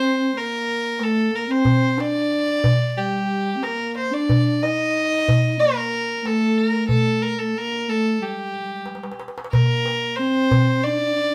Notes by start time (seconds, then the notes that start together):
Already playing: C4 C5
0.33 A#3 A#4, darbuka ka
0.67 darbuka ka
0.99 A3 A4, darbuka tek
1.17 darbuka ka
1.30 A#3, darbuka ka
1.35 A#4
1.47 C4 C5
1.65 darbuka dum
1.97 D4 D5, darbuka tek
2.48 darbuka ka
2.64 darbuka dum
2.97 G3 G4, darbuka ka
3.56 C4
3.62 A#3 A#4, darbuka tek
3.79 darbuka ka
3.96 C5, darbuka ka
4.11 D4 D5
4.29 darbuka dum
4.63 D#4 D#5, darbuka tek
5.12 darbuka ka
5.28 darbuka dum
5.59 A#3 A#4, darbuka ka
5.94 darbuka ka
6.16 A#3
6.22 A3 A4, darbuka tek
6.41 darbuka ka
6.57 A#4, darbuka ka
6.88 A3 A4, darbuka dum
7.22 A#4
7.39 A3 A4, darbuka ka
7.55 A#3 A#4
7.71 darbuka ka
7.88 A3 A4
8.20 G3 G4
8.27 G3
8.36 G3
8.43 G3
8.50 G3, darbuka ka
8.59 G3
8.64 G3
8.74 G3
8.81 G3
8.86 darbuka tek
8.90 G3
8.95 G3, darbuka ka
9.02 G3, darbuka tek
9.12 darbuka ka
9.20 darbuka tek
9.28 darbuka ka
9.38 darbuka tek
9.44 darbuka ka
9.52 A#3 A#4, darbuka dum
9.85 darbuka tek
10.02 darbuka ka
10.16 C4 C5
10.36 darbuka ka
10.51 darbuka dum
10.83 D4 D5, darbuka ka
10.92 D4
11.00 D4
11.06 D4
11.14 D4, darbuka ka
11.23 D4
11.29 D4